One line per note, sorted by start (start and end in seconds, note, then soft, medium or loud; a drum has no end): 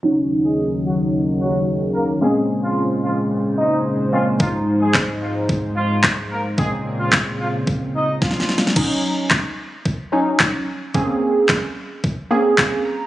0.03 2.20 D#2 medium
0.03 4.36 C#3 medium
0.03 2.20 D#3 medium
0.03 2.17 F#3 medium
0.03 2.20 F#3 medium
0.03 0.14 F#3 medium
0.03 2.18 C#4 medium
0.03 2.18 D#4 medium
0.03 0.14 F#4 medium
0.44 0.65 G#3 medium
0.44 0.65 G#4 medium
0.85 0.96 F#3 medium
0.85 0.96 F#4 medium
1.40 1.61 F#3 medium
1.40 1.60 F#4 medium
1.94 2.05 A#3 medium
1.94 2.05 A#4 medium
2.21 4.38 A#2 medium
2.21 4.09 G#3 medium
2.21 8.72 G#3 medium
2.21 2.32 G#3 medium
2.21 4.09 A#3 medium
2.21 4.09 C4 medium
2.21 4.09 C#4 medium
2.21 2.32 G#4 medium
2.63 2.84 F3 medium
2.63 2.83 F4 medium
3.04 3.14 F3 medium
3.04 3.14 F4 medium
3.58 3.78 D#4 medium
3.58 3.79 D#5 medium
4.12 4.23 F3 medium
4.12 4.39 G#3 soft
4.12 4.40 A#3 soft
4.12 4.40 C4 soft
4.12 4.40 C#4 medium
4.12 4.23 F4 medium
4.40 6.54 G#2 medium
4.40 6.56 G#2 medium
4.40 6.54 F3 medium
4.40 4.51 F3 medium
4.40 6.54 G#3 medium
4.40 6.54 D#4 medium
4.40 4.50 F4 medium
4.40 kick loud
4.81 5.02 G#3 medium
4.81 5.01 G#4 medium
4.94 kick loud
4.94 snare medium
4.94 clap loud
5.22 5.33 F3 medium
5.22 5.32 F4 medium
5.49 kick loud
5.76 5.97 F3 medium
5.76 5.97 F4 medium
6.04 kick loud
6.04 snare medium
6.04 clap loud
6.31 6.42 A#3 medium
6.31 6.41 A#4 medium
6.57 8.74 A#2 medium
6.57 8.72 C#3 medium
6.57 8.74 C#3 medium
6.57 8.72 G#3 medium
6.57 6.69 G#3 medium
6.57 8.72 A#3 medium
6.57 8.72 C4 medium
6.57 6.68 G#4 loud
6.57 kick loud
6.99 7.20 F3 medium
6.99 7.19 F4 medium
7.13 kick loud
7.13 snare medium
7.13 clap loud
7.40 7.51 F3 medium
7.40 7.50 F4 medium
7.67 kick loud
7.95 8.15 D#4 medium
7.95 8.15 D#5 medium
8.22 8.61 F3 medium
8.22 8.60 F4 medium
8.22 kick loud
8.22 snare medium
8.31 snare medium
8.40 snare medium
8.49 snare medium
8.58 snare medium
8.67 snare medium
8.76 9.41 F#3 medium
8.76 9.41 C#4 medium
8.76 9.41 D#4 medium
8.76 kick loud
8.76 crash medium
9.31 kick loud
9.31 snare medium
9.31 clap loud
9.86 kick loud
10.12 10.61 F#3 medium
10.12 10.61 C#4 medium
10.12 10.61 D#4 medium
10.40 kick loud
10.40 snare medium
10.40 clap loud
10.94 11.59 A#3 medium
10.94 11.59 C4 medium
10.94 11.60 C#4 medium
10.94 11.60 G#4 loud
10.94 kick loud
11.49 kick loud
11.49 snare medium
11.49 clap loud
12.04 kick loud
12.31 12.79 A#3 medium
12.31 12.80 C4 medium
12.31 12.80 C#4 medium
12.31 12.80 G#4 medium
12.58 12.83 F5 medium
12.58 kick loud
12.58 snare medium
12.58 clap loud
12.85 13.07 A#5 medium